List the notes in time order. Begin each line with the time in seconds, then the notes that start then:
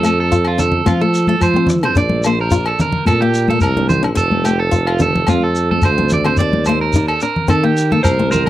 Already playing: F2
0.03 A3 A4, low agogo, shekere
0.20 A4
0.32 F4, shekere
0.45 F4, low agogo
0.58 D4 A4, low conga, shekere
0.72 low conga
0.85 F3 C4 F4, high conga, low agogo, shekere
1.01 A3 A4
1.14 shekere
1.27 A3 A4, high conga
1.40 F3 C5, low agogo, shekere
1.54 C4, high conga
1.67 muted clean electric guitar stroke, low conga, shekere
1.83 C4 C5, low agogo
1.95 A#1 D4 D5, shekere
2.09 high conga
2.23 A#3 C5, low agogo, shekere
2.41 A#4
2.51 F4, shekere
2.66 A4, low agogo
2.79 D4 A#4, low conga, shekere
2.92 low conga
3.06 A#2 C4 A4, high conga, low agogo, shekere
3.21 A#3 G4
3.34 shekere
3.48 A#3 A4, high conga
3.61 C2 A#4, low agogo, shekere
3.77 D4, high conga
3.89 C5, low conga, shekere
4.03 D4, muted clean electric guitar stroke, low agogo
4.15 F1 A4, muted nylon-string guitar stroke, shekere
4.32 high conga
4.45 A3 G4, low agogo, shekere
4.59 A4
4.71 F4, shekere
4.87 F4, low agogo
4.99 D4 A4, low conga, shekere
5.16 low conga
5.27 F2 C4 F4, high conga, low agogo, shekere
5.44 A4
5.55 shekere
5.71 A4, high conga
5.82 D2 C5, low agogo, shekere
5.98 C4, high conga
6.09 D5, low conga, shekere
6.24 C4 C5, low agogo
6.37 D#2 C4 D5, shekere
6.53 high conga
6.65 A#3 C5, high conga, low agogo, shekere
6.81 A#4
6.93 D#4, shekere
7.08 A4, low agogo
7.21 D4 A#4, shekere
7.36 low conga
7.48 D#3 C4 A4, low agogo, shekere
7.64 A#3 G4
7.77 shekere
7.92 A#3 A4, high conga
8.03 C2 A#4 C5, high conga, low agogo, shekere
8.19 C4, high conga
8.31 A#4 C5, low conga, shekere
8.46 A#4